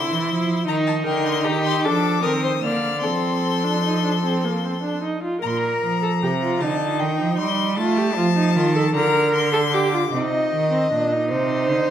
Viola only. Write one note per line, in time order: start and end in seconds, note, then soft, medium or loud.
0.00 0.66 E4 medium
0.68 1.87 D#4 medium
1.85 2.24 D4 medium
2.25 2.63 C4 medium
2.63 3.02 A#3 medium
3.03 3.65 C4 medium
3.63 3.84 D4 medium
3.84 4.03 D#4 medium
4.04 4.12 D4 medium
4.24 4.46 C4 medium
4.45 4.67 A#3 medium
4.65 4.83 C4 medium
4.83 5.03 D4 medium
5.04 5.23 D#4 medium
5.24 5.42 F4 medium
5.43 5.98 A#4 medium
6.03 6.11 A4 medium
6.23 6.31 G4 medium
6.42 6.63 F4 medium
6.62 7.78 D#4 medium
7.79 7.99 F4 medium
7.98 8.17 G4 medium
8.18 8.25 F4 medium
8.37 8.55 D#4 medium
8.56 8.75 F4 medium
8.76 8.83 A4 medium
8.95 9.52 A#4 medium
9.53 9.61 A4 medium
9.74 9.93 G4 medium
9.94 10.01 F4 medium
10.13 10.68 D#4 medium
10.73 10.92 C4 medium
10.93 11.14 D4 medium
11.12 11.90 D#4 medium